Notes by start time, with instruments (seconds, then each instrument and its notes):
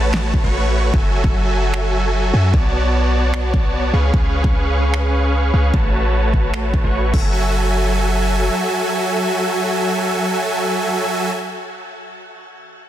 Already playing: 808-style bass A1, supersaw synth A3 F#4 B4 C#5 A5
0.14 finger snap, snare
0.34 kick
0.44 808-style bass A1, supersaw synth A3 F#4 B4 C#5 C#6
0.94 808-style bass F#1, supersaw synth F#4 A4 E5 G#5, kick
1.24 kick
1.74 finger snap
2.34 808-style bass F#2, supersaw synth F#3 F#4 A4 E5 G#5
2.53 808-style bass B1, supersaw synth B3 F#4 C#5 D5, kick
3.34 finger snap
3.54 kick
3.93 808-style bass C#2, supersaw synth C#4 G#4 B4 F5 C#6
4.14 808-style bass C#2, supersaw synth C#4 G#4, kick
4.44 kick
4.94 finger snap
5.54 808-style bass C#2, supersaw synth C#4 G#4 B4 F5 C#6
5.74 808-style bass A1, supersaw synth A3 F#4 B4 C#5 A5, kick
6.34 kick
6.54 finger snap
6.74 kick
6.84 808-style bass A1, supersaw synth A3 F#4 B4 C#5 C#6
7.14 808-style bass F#1, supersaw synth F#3 F#4 A4 E5, kick, crash